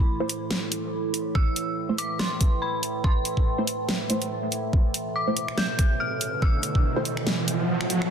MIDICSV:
0, 0, Header, 1, 6, 480
1, 0, Start_track
1, 0, Key_signature, 0, "minor"
1, 0, Tempo, 422535
1, 1537, Time_signature, 4, 2, 24, 8
1, 9205, End_track
2, 0, Start_track
2, 0, Title_t, "Synth bell"
2, 0, Program_c, 0, 98
2, 0, Note_on_c, 0, 83, 83
2, 1010, Note_off_c, 0, 83, 0
2, 1534, Note_on_c, 0, 88, 116
2, 1982, Note_off_c, 0, 88, 0
2, 2254, Note_on_c, 0, 86, 98
2, 2479, Note_off_c, 0, 86, 0
2, 2494, Note_on_c, 0, 84, 97
2, 2974, Note_on_c, 0, 83, 86
2, 2990, Note_off_c, 0, 84, 0
2, 3456, Note_on_c, 0, 84, 85
2, 3470, Note_off_c, 0, 83, 0
2, 4371, Note_off_c, 0, 84, 0
2, 5857, Note_on_c, 0, 86, 93
2, 6339, Note_on_c, 0, 91, 106
2, 6351, Note_off_c, 0, 86, 0
2, 6817, Note_on_c, 0, 89, 101
2, 6832, Note_off_c, 0, 91, 0
2, 7296, Note_on_c, 0, 88, 93
2, 7311, Note_off_c, 0, 89, 0
2, 8211, Note_off_c, 0, 88, 0
2, 9205, End_track
3, 0, Start_track
3, 0, Title_t, "Synth stab"
3, 0, Program_c, 1, 62
3, 230, Note_on_c, 1, 57, 93
3, 230, Note_on_c, 1, 64, 88
3, 230, Note_on_c, 1, 72, 108
3, 431, Note_off_c, 1, 57, 0
3, 432, Note_off_c, 1, 64, 0
3, 432, Note_off_c, 1, 72, 0
3, 2150, Note_on_c, 1, 57, 100
3, 2150, Note_on_c, 1, 64, 88
3, 2150, Note_on_c, 1, 72, 105
3, 2351, Note_off_c, 1, 57, 0
3, 2351, Note_off_c, 1, 64, 0
3, 2351, Note_off_c, 1, 72, 0
3, 4070, Note_on_c, 1, 57, 98
3, 4070, Note_on_c, 1, 64, 89
3, 4070, Note_on_c, 1, 72, 106
3, 4271, Note_off_c, 1, 57, 0
3, 4271, Note_off_c, 1, 64, 0
3, 4271, Note_off_c, 1, 72, 0
3, 4658, Note_on_c, 1, 57, 93
3, 4658, Note_on_c, 1, 64, 86
3, 4658, Note_on_c, 1, 72, 103
3, 4799, Note_off_c, 1, 57, 0
3, 4799, Note_off_c, 1, 64, 0
3, 4799, Note_off_c, 1, 72, 0
3, 5991, Note_on_c, 1, 57, 99
3, 5991, Note_on_c, 1, 64, 87
3, 5991, Note_on_c, 1, 72, 104
3, 6192, Note_off_c, 1, 57, 0
3, 6192, Note_off_c, 1, 64, 0
3, 6192, Note_off_c, 1, 72, 0
3, 7909, Note_on_c, 1, 57, 94
3, 7909, Note_on_c, 1, 72, 107
3, 7910, Note_on_c, 1, 64, 92
3, 8111, Note_off_c, 1, 57, 0
3, 8111, Note_off_c, 1, 64, 0
3, 8111, Note_off_c, 1, 72, 0
3, 9205, End_track
4, 0, Start_track
4, 0, Title_t, "Synth drone"
4, 0, Program_c, 2, 95
4, 0, Note_on_c, 2, 45, 70
4, 0, Note_on_c, 2, 52, 72
4, 5376, Note_on_c, 2, 47, 70
4, 5404, Note_off_c, 2, 52, 0
4, 9205, Note_off_c, 2, 45, 0
4, 9205, Note_off_c, 2, 47, 0
4, 9205, End_track
5, 0, Start_track
5, 0, Title_t, "Riser"
5, 0, Program_c, 3, 103
5, 5376, Note_on_c, 3, 60, 80
5, 9205, Note_off_c, 3, 60, 0
5, 9205, End_track
6, 0, Start_track
6, 0, Title_t, "Drums"
6, 334, Note_on_c, 9, 42, 77
6, 448, Note_off_c, 9, 42, 0
6, 575, Note_on_c, 9, 38, 120
6, 688, Note_off_c, 9, 38, 0
6, 814, Note_on_c, 9, 42, 81
6, 928, Note_off_c, 9, 42, 0
6, 1294, Note_on_c, 9, 42, 78
6, 1407, Note_off_c, 9, 42, 0
6, 1535, Note_on_c, 9, 36, 116
6, 1648, Note_off_c, 9, 36, 0
6, 1775, Note_on_c, 9, 42, 78
6, 1888, Note_off_c, 9, 42, 0
6, 2254, Note_on_c, 9, 42, 77
6, 2368, Note_off_c, 9, 42, 0
6, 2492, Note_on_c, 9, 38, 120
6, 2606, Note_off_c, 9, 38, 0
6, 2733, Note_on_c, 9, 42, 76
6, 2735, Note_on_c, 9, 36, 105
6, 2847, Note_off_c, 9, 42, 0
6, 2849, Note_off_c, 9, 36, 0
6, 3214, Note_on_c, 9, 42, 77
6, 3328, Note_off_c, 9, 42, 0
6, 3455, Note_on_c, 9, 36, 122
6, 3569, Note_off_c, 9, 36, 0
6, 3693, Note_on_c, 9, 42, 76
6, 3807, Note_off_c, 9, 42, 0
6, 3830, Note_on_c, 9, 36, 60
6, 3944, Note_off_c, 9, 36, 0
6, 4174, Note_on_c, 9, 42, 70
6, 4288, Note_off_c, 9, 42, 0
6, 4415, Note_on_c, 9, 38, 117
6, 4528, Note_off_c, 9, 38, 0
6, 4654, Note_on_c, 9, 42, 72
6, 4768, Note_off_c, 9, 42, 0
6, 4789, Note_on_c, 9, 42, 37
6, 4903, Note_off_c, 9, 42, 0
6, 5135, Note_on_c, 9, 42, 73
6, 5248, Note_off_c, 9, 42, 0
6, 5376, Note_on_c, 9, 36, 116
6, 5490, Note_off_c, 9, 36, 0
6, 5615, Note_on_c, 9, 42, 73
6, 5728, Note_off_c, 9, 42, 0
6, 6095, Note_on_c, 9, 42, 69
6, 6209, Note_off_c, 9, 42, 0
6, 6230, Note_on_c, 9, 26, 73
6, 6334, Note_on_c, 9, 38, 117
6, 6344, Note_off_c, 9, 26, 0
6, 6448, Note_off_c, 9, 38, 0
6, 6574, Note_on_c, 9, 26, 75
6, 6574, Note_on_c, 9, 42, 74
6, 6576, Note_on_c, 9, 36, 106
6, 6688, Note_off_c, 9, 26, 0
6, 6688, Note_off_c, 9, 42, 0
6, 6689, Note_off_c, 9, 36, 0
6, 7054, Note_on_c, 9, 42, 73
6, 7167, Note_off_c, 9, 42, 0
6, 7295, Note_on_c, 9, 36, 113
6, 7409, Note_off_c, 9, 36, 0
6, 7533, Note_on_c, 9, 42, 78
6, 7647, Note_off_c, 9, 42, 0
6, 7669, Note_on_c, 9, 36, 61
6, 7783, Note_off_c, 9, 36, 0
6, 8013, Note_on_c, 9, 42, 73
6, 8126, Note_off_c, 9, 42, 0
6, 8147, Note_on_c, 9, 26, 79
6, 8254, Note_on_c, 9, 38, 115
6, 8261, Note_off_c, 9, 26, 0
6, 8368, Note_off_c, 9, 38, 0
6, 8495, Note_on_c, 9, 42, 71
6, 8609, Note_off_c, 9, 42, 0
6, 8868, Note_on_c, 9, 26, 65
6, 8974, Note_on_c, 9, 42, 75
6, 8982, Note_off_c, 9, 26, 0
6, 9088, Note_off_c, 9, 42, 0
6, 9108, Note_on_c, 9, 26, 62
6, 9205, Note_off_c, 9, 26, 0
6, 9205, End_track
0, 0, End_of_file